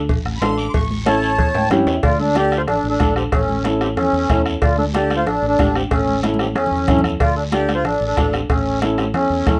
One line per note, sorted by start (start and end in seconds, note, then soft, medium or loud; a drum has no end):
0.09 0.22 A1 medium
0.09 bombo low medium
0.09 cowbell medium
0.09 high conga soft
0.09 low conga medium
0.09 long guiro medium
0.25 0.38 A1 loud
0.25 bombo rim medium
0.37 0.39 B5 medium
0.41 0.67 A1 medium
0.41 0.65 D4 medium
0.41 0.65 F4 medium
0.41 0.65 A4 medium
0.41 0.57 C6 loud
0.41 bombo rim medium
0.41 cowbell medium
0.41 high conga medium
0.41 low timbale medium
0.41 short guiro medium
0.58 0.74 D6 loud
0.58 short guiro medium
0.69 0.72 C6 medium
0.74 1.39 A1 medium
0.74 0.89 C#6 medium
0.74 bombo low medium
0.74 cowbell loud
0.74 high conga soft
0.74 low conga medium
0.74 long guiro medium
0.90 1.06 C#6 medium
0.90 high conga medium
1.06 1.29 C#4 medium
1.06 1.29 E4 medium
1.06 1.29 A4 medium
1.06 1.67 C#5 medium
1.06 1.69 A5 loud
1.06 bombo rim medium
1.06 cowbell medium
1.06 high conga loud
1.06 short guiro medium
1.22 short guiro medium
1.38 1.52 E2 medium
1.38 bombo low medium
1.38 cowbell medium
1.38 high conga soft
1.38 low conga medium
1.38 long guiro medium
1.54 1.69 A2 medium
1.54 1.70 G5 medium
1.54 high conga medium
1.54 high timbale medium
1.71 1.85 G2 medium
1.71 1.93 C#4 medium
1.71 1.94 E4 medium
1.71 1.94 G4 loud
1.71 2.01 E5 medium
1.71 bombo rim medium
1.71 cowbell medium
1.71 high conga medium
1.71 low conga medium
1.71 short guiro medium
1.86 2.01 E2 medium
1.86 low timbale medium
1.86 short guiro medium
2.03 2.68 D2 medium
2.03 2.19 F4 loud
2.03 2.18 D5 medium
2.03 bombo low medium
2.03 bombo rim medium
2.03 cowbell loud
2.03 high conga soft
2.03 long guiro medium
2.19 2.36 D4 medium
2.19 2.34 A4 medium
2.19 high conga medium
2.35 2.58 D4 medium
2.35 2.58 F4 medium
2.35 2.58 G4 loud
2.35 2.58 A4 medium
2.35 2.56 D5 medium
2.35 bombo rim medium
2.35 cowbell medium
2.35 high conga medium
2.35 short guiro medium
2.52 bombo rim medium
2.52 short guiro medium
2.57 2.62 F4 medium
2.57 2.62 C5 medium
2.67 2.81 A1 medium
2.67 2.88 D4 medium
2.67 2.88 A4 medium
2.67 bombo rim medium
2.67 cowbell medium
2.67 high conga soft
2.67 low conga medium
2.67 long guiro medium
2.84 2.97 A1 medium
2.89 3.15 D4 medium
2.89 3.15 A4 medium
3.00 3.26 A#1 medium
3.00 3.23 D4 medium
3.00 3.23 F4 medium
3.00 3.23 A4 medium
3.00 bombo low medium
3.00 bombo rim medium
3.00 cowbell medium
3.00 high conga medium
3.00 short guiro medium
3.16 3.23 C4 medium
3.16 3.23 G4 medium
3.16 bombo rim medium
3.16 short guiro medium
3.32 3.97 A1 medium
3.32 3.63 C#4 medium
3.32 3.62 A4 medium
3.32 bombo low medium
3.32 bombo rim medium
3.32 cowbell loud
3.32 high conga soft
3.32 low conga medium
3.32 long guiro medium
3.49 high conga medium
3.64 3.88 C#4 medium
3.64 3.88 E4 medium
3.64 3.88 A4 medium
3.64 bombo rim medium
3.64 cowbell medium
3.64 high conga medium
3.64 short guiro medium
3.81 3.88 C4 medium
3.81 3.88 G4 medium
3.81 bombo rim medium
3.81 short guiro medium
3.96 4.10 E2 medium
3.96 4.42 C#4 loud
3.96 4.42 A4 medium
3.96 bombo rim medium
3.96 cowbell medium
3.96 high conga soft
3.96 low conga medium
3.96 long guiro medium
4.13 4.26 E2 medium
4.29 4.55 E2 medium
4.29 4.52 C#4 medium
4.29 4.52 E4 medium
4.29 4.53 A4 medium
4.29 bombo low medium
4.29 bombo rim medium
4.29 cowbell medium
4.29 high conga medium
4.29 short guiro medium
4.45 bombo rim medium
4.45 short guiro medium
4.62 5.26 D2 medium
4.62 4.77 F4 medium
4.62 4.77 D5 medium
4.62 bombo low medium
4.62 bombo rim medium
4.62 cowbell loud
4.62 high conga soft
4.62 long guiro medium
4.78 4.85 D4 medium
4.78 4.85 A4 medium
4.78 high conga medium
4.94 5.17 D4 medium
4.94 5.17 F4 medium
4.94 5.14 G4 loud
4.94 5.17 A4 medium
4.94 5.14 D5 medium
4.94 bombo rim medium
4.94 cowbell medium
4.94 high conga medium
4.94 short guiro medium
5.10 bombo rim medium
5.10 high conga medium
5.10 short guiro medium
5.16 5.26 F4 loud
5.16 5.26 C5 medium
5.26 5.39 A1 medium
5.26 5.46 D4 medium
5.26 5.47 A4 medium
5.26 bombo rim medium
5.26 cowbell medium
5.26 high conga soft
5.26 low conga medium
5.26 long guiro medium
5.42 5.55 A1 medium
5.48 5.76 D4 medium
5.48 5.73 A4 medium
5.59 5.85 A1 medium
5.59 5.81 D4 medium
5.59 5.82 F4 medium
5.59 5.82 G4 medium
5.59 bombo low medium
5.59 bombo rim medium
5.59 cowbell medium
5.59 high conga medium
5.59 short guiro medium
5.75 5.82 C4 medium
5.75 5.83 G4 medium
5.75 bombo rim medium
5.75 short guiro medium
5.90 6.55 A1 loud
5.90 6.21 C#4 medium
5.90 6.22 A4 medium
5.90 bombo low medium
5.90 bombo rim medium
5.90 cowbell loud
5.90 high conga soft
5.90 long guiro medium
6.07 high conga medium
6.23 6.46 C#4 medium
6.23 6.46 E4 medium
6.23 6.47 A4 medium
6.23 bombo rim medium
6.23 cowbell medium
6.23 high conga medium
6.23 short guiro medium
6.34 high conga loud
6.39 6.47 C4 medium
6.39 6.47 G4 medium
6.39 bombo rim medium
6.39 short guiro medium
6.45 high conga medium
6.55 6.68 E2 medium
6.55 7.01 C#4 medium
6.55 7.01 A4 medium
6.55 bombo rim medium
6.55 cowbell medium
6.55 long guiro medium
6.66 low conga medium
6.72 6.85 E2 medium
6.77 low conga medium
6.88 7.03 G2 medium
6.88 7.11 C#4 medium
6.88 7.11 E4 medium
6.88 7.11 A4 medium
6.88 bombo low medium
6.88 bombo rim medium
6.88 cowbell medium
6.88 low conga loud
6.88 short guiro medium
6.99 low conga medium
7.04 7.19 E2 medium
7.04 bombo rim medium
7.04 short guiro medium
7.09 low conga medium
7.20 7.85 D2 medium
7.20 7.36 F4 medium
7.20 7.35 D5 medium
7.20 bombo low medium
7.20 bombo rim medium
7.20 cowbell loud
7.20 long guiro medium
7.36 7.44 D4 medium
7.36 7.43 A4 medium
7.52 7.75 D4 medium
7.52 7.75 F4 medium
7.52 7.73 G4 medium
7.52 7.75 A4 medium
7.52 7.73 D5 medium
7.52 bombo rim medium
7.52 cowbell medium
7.52 high conga medium
7.52 short guiro medium
7.69 bombo rim medium
7.69 high conga medium
7.69 short guiro medium
7.75 7.84 F4 medium
7.75 7.84 C5 medium
7.85 7.98 A1 medium
7.85 8.04 D4 medium
7.85 8.05 A4 medium
7.85 bombo rim medium
7.85 cowbell medium
7.85 high conga soft
7.85 low conga medium
7.85 long guiro medium
8.01 8.14 A1 medium
8.06 8.34 D4 medium
8.06 8.32 A4 medium
8.17 8.43 A1 medium
8.17 8.40 D4 medium
8.17 8.40 F4 medium
8.17 8.40 A4 medium
8.17 bombo low medium
8.17 bombo rim medium
8.17 cowbell medium
8.17 high conga medium
8.17 low timbale medium
8.17 short guiro medium
8.33 8.40 C4 medium
8.33 8.41 G4 medium
8.33 bombo rim medium
8.33 short guiro medium
8.50 9.14 A1 medium
8.50 8.80 C#4 medium
8.50 8.80 A4 medium
8.50 bombo low medium
8.50 bombo rim medium
8.50 cowbell loud
8.50 high conga soft
8.50 long guiro medium
8.82 9.04 C#4 medium
8.82 9.04 E4 medium
8.82 9.05 A4 medium
8.82 bombo rim medium
8.82 cowbell medium
8.82 high conga loud
8.82 short guiro medium
8.98 9.05 C4 medium
8.98 9.05 G4 medium
8.98 bombo rim medium
8.98 high conga medium
8.98 short guiro medium
9.14 9.27 E2 medium
9.14 9.59 C#4 medium
9.14 9.59 A4 medium
9.14 bombo rim medium
9.14 cowbell medium
9.14 high conga soft
9.14 low conga medium
9.14 long guiro medium
9.30 9.43 E2 medium
9.46 9.60 E2 medium
9.46 9.60 C#4 medium
9.46 9.60 E4 medium
9.46 9.60 A4 medium
9.46 bombo low medium
9.46 bombo rim medium
9.46 cowbell medium
9.46 high conga medium
9.46 low conga medium
9.46 short guiro medium